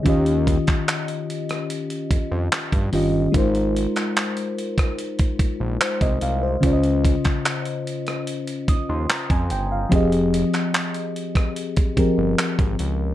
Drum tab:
HH |xxxxxxxxxxx-xxo-|xxxxxxxxxxx-xxx-|xxxxxxxxxxx-xxx-|xxxxxxxxxxx-xxx-|
CP |---xx-------x---|---xx-------x---|---xx-------x---|---xx-------x---|
SD |-------r----r---|-------r----r---|-------r----r---|-------r----r---|
BD |o-oo------o--o--|o------o-oo--o--|o-oo------o--o--|o------o-oo--o--|